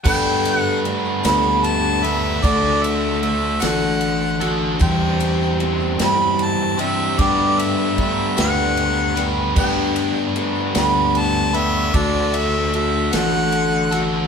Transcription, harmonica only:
0.04 0.56 G5 loud
0.56 0.80 F#5 loud
1.25 1.65 B5 loud
1.64 2.05 A5 loud
2.04 2.45 E5 medium
2.44 2.84 D5 medium
2.83 3.22 E5 medium
3.22 3.63 E5 medium
3.62 4.51 F#5 loud
4.82 5.56 G5 medium
6.03 6.45 B5 loud
6.43 6.82 A5 loud
6.81 7.21 E5 medium
7.19 7.61 D5 medium
7.59 7.98 E5 loud
8.00 8.36 E5 medium
8.40 9.24 F#5 loud
9.58 10.32 G5 medium
10.77 11.19 B5 loud
11.18 11.57 A5 loud
11.56 11.97 E5 loud
11.96 12.37 D5 medium
12.35 12.74 E5 medium
12.75 13.14 E5 medium
13.13 14.02 F#5 loud

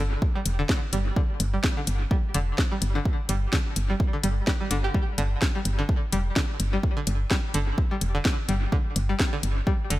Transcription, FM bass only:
0.00 0.17 G1 medium
0.46 0.64 F1 medium
0.93 1.11 G1 medium
1.40 1.58 G1 loud
1.87 2.06 G1 medium
2.35 2.53 F1 medium
2.82 3.00 G1 medium
3.29 3.47 G1 loud
3.76 3.95 G1 medium
4.24 4.42 G1 loud
4.71 4.89 G1 medium
5.18 5.36 G1 loud
5.65 5.84 G1 medium
6.13 6.31 F1 medium
6.60 6.78 G1 medium
7.07 7.25 G1 loud
7.54 7.72 G1 medium
8.01 8.20 F1 medium
8.49 8.67 G1 loud
8.96 9.14 G1 loud
9.43 9.61 G1 medium
9.90 9.99 F1 medium

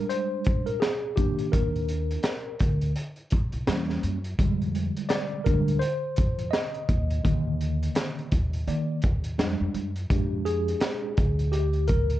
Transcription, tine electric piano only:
0.00 0.77 G3 soft
0.00 0.78 G#3 soft
0.00 0.78 D4 medium
0.09 0.69 C5 medium
0.66 0.81 A#4 medium
0.80 1.14 G#4 medium
1.16 2.20 D#3 medium
1.16 2.21 A#3 soft
1.16 2.21 D4 medium
1.16 1.53 G4 medium
1.52 2.91 A#4 medium
3.67 4.17 G3 soft
3.67 4.18 A#3 soft
3.67 4.18 C#4 medium
4.39 6.85 D3 medium
4.39 5.45 G3 medium
4.39 5.45 G#3 soft
5.09 5.46 D5 medium
5.44 5.78 G3 soft
5.44 5.78 G#3 soft
5.44 5.78 D4 medium
5.44 5.82 A#4 medium
5.79 6.54 C5 loud
6.51 9.34 D#5 medium
7.24 8.28 D3 medium
7.24 8.27 D#3 medium
7.24 8.27 A#3 soft
8.67 8.99 D#3 soft
8.67 9.00 A#3 soft
8.67 9.00 D5 medium
9.38 9.89 G3 medium
9.38 9.89 G#3 soft
9.38 9.90 D4 medium
10.10 11.14 G#3 medium
10.10 11.14 D4 medium
10.10 11.13 G4 soft
10.45 11.56 G#4 medium
11.52 11.86 G4 medium
11.88 12.20 A#4 medium

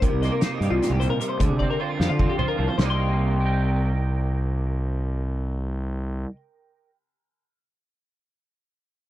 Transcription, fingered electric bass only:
0.02 0.11 C2 medium
0.12 0.29 C2 medium
0.61 0.69 G2 medium
0.70 0.79 C2 medium
0.90 1.07 C2 medium
1.40 1.48 D2 medium
1.50 1.67 C3 medium
2.00 2.08 F2 medium
2.10 2.27 D3 medium
2.59 2.67 C2 medium
2.78 6.24 C2 medium

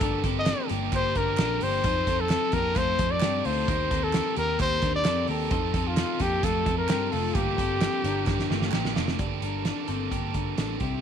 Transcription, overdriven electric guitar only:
0.01 0.24 G2 medium
0.01 0.24 D3 medium
0.01 0.25 F3 medium
0.01 0.25 A#3 medium
0.01 0.25 D4 medium
0.01 0.24 G4 medium
0.25 0.48 F3 soft
0.25 0.49 A#3 medium
0.25 0.48 D4 medium
0.25 0.47 G4 medium
0.48 0.71 G2 medium
0.48 0.71 D3 medium
0.48 0.71 F3 medium
0.48 0.71 A#3 medium
0.48 0.70 D4 medium
0.48 0.69 G4 medium
0.70 0.91 F3 soft
0.70 0.92 A#3 soft
0.70 0.93 D4 medium
0.70 0.93 G4 medium
0.92 1.39 F3 medium
0.92 1.38 A#3 medium
0.92 1.39 D4 medium
0.92 1.39 G4 medium
1.39 1.62 G2 medium
1.39 1.62 D3 medium
1.39 1.62 F3 medium
1.39 1.62 A#3 medium
1.39 1.62 D4 medium
1.39 1.61 G4 medium
1.62 1.83 F3 soft
1.62 1.84 A#3 soft
1.62 1.84 D4 soft
1.62 1.85 G4 soft
1.84 2.07 F3 medium
1.84 2.08 C4 medium
1.84 2.07 D#4 medium
1.84 2.06 A4 medium
2.07 2.29 C4 soft
2.07 2.30 D#4 soft
2.07 2.31 A4 medium
2.30 2.53 F3 medium
2.30 2.54 C4 medium
2.30 2.54 D#4 medium
2.30 2.52 A4 medium
2.53 2.77 C4 soft
2.53 2.77 D#4 medium
2.53 2.76 A4 medium
2.77 3.21 F3 medium
2.77 3.23 C4 medium
2.77 3.23 D#4 medium
2.77 3.23 A4 medium
3.22 3.45 F3 medium
3.22 3.46 C4 medium
3.22 3.45 D#4 medium
3.22 3.43 A4 loud
3.45 3.67 C4 soft
3.45 3.69 D#4 medium
3.45 3.68 A4 medium
3.68 3.91 D#3 medium
3.68 3.91 G3 medium
3.68 3.91 C4 medium
3.68 3.91 G4 medium
3.68 3.89 A#4 medium
3.90 4.13 C4 soft
3.90 4.14 G4 medium
3.90 4.14 A#4 medium
4.14 4.37 D#3 medium
4.14 4.37 G3 medium
4.14 4.37 C4 medium
4.14 4.36 G4 loud
4.14 4.35 A#4 loud
4.36 4.59 C4 soft
4.36 4.60 G4 soft
4.36 4.60 A#4 soft
4.59 5.05 G3 medium
4.59 5.06 C4 medium
4.59 5.06 G4 medium
4.59 5.06 A#4 medium
5.05 5.29 D#3 medium
5.05 5.29 G3 medium
5.05 5.29 C4 medium
5.05 5.28 G4 medium
5.05 5.26 A#4 medium
5.28 5.50 C4 soft
5.28 5.52 G4 soft
5.28 5.51 A#4 soft
5.51 5.75 F3 medium
5.51 5.75 C4 medium
5.51 5.74 D#4 medium
5.51 5.73 A4 medium
5.74 5.96 C4 soft
5.74 5.97 D#4 soft
5.74 5.97 A4 medium
5.97 6.20 F3 medium
5.97 6.21 C4 medium
5.97 6.20 D#4 medium
5.97 6.19 A4 loud
6.20 6.42 C4 soft
6.20 6.43 D#4 soft
6.20 6.43 A4 medium
6.42 6.89 F3 medium
6.42 6.89 C4 medium
6.42 6.89 D#4 medium
6.42 6.90 A4 medium
6.89 7.12 F3 medium
6.89 7.13 C4 medium
6.89 7.13 D#4 medium
6.89 7.12 A4 medium
7.13 7.35 C4 soft
7.13 7.36 D#4 soft
7.13 7.36 A4 medium
7.35 7.58 G2 medium
7.35 7.59 D3 medium
7.35 7.58 F3 medium
7.35 7.59 A#3 medium
7.35 7.57 D4 medium
7.35 7.56 G4 loud
7.57 7.81 F3 medium
7.57 7.81 A#3 medium
7.57 7.81 D4 medium
7.57 7.81 G4 medium
7.81 8.04 G2 medium
7.81 8.04 D3 medium
7.81 8.05 F3 medium
7.81 8.05 A#3 medium
7.81 8.04 D4 loud
7.81 8.03 G4 loud
8.04 8.26 F3 medium
8.04 8.28 A#3 medium
8.04 8.28 D4 medium
8.04 8.27 G4 medium
8.27 8.72 F3 medium
8.27 8.74 A#3 medium
8.27 8.73 D4 medium
8.27 8.74 G4 medium
8.72 8.96 G2 medium
8.72 8.96 D3 medium
8.72 8.96 F3 medium
8.72 8.96 A#3 medium
8.72 8.95 D4 medium
8.72 8.94 G4 medium
8.95 9.18 F3 soft
8.95 9.18 A#3 soft
8.95 9.18 D4 medium
8.95 9.19 G4 medium
9.18 9.42 G2 medium
9.18 9.42 D3 medium
9.18 9.42 G3 medium
9.18 9.40 A#3 medium
9.18 9.40 D4 medium
9.18 9.39 A4 medium
9.40 9.64 G3 soft
9.40 9.64 A#3 medium
9.40 9.65 D4 medium
9.40 9.64 A4 medium
9.65 9.88 G2 medium
9.65 9.88 D3 medium
9.65 9.88 G3 medium
9.65 9.88 A#3 medium
9.65 9.87 D4 medium
9.65 9.86 A4 medium
9.87 10.09 G3 soft
9.87 10.10 A#3 medium
9.87 10.11 D4 soft
9.87 10.11 A4 medium
10.11 10.58 G3 medium
10.11 10.57 A#3 soft
10.11 10.57 D4 medium
10.11 10.57 A4 medium
10.57 10.80 G2 medium
10.57 10.80 D3 medium
10.57 10.81 G3 medium
10.57 10.81 A#3 medium
10.57 10.80 D4 medium
10.57 10.79 A4 medium
10.79 11.01 C4 soft
10.79 11.01 E4 soft
10.79 11.01 G4 medium

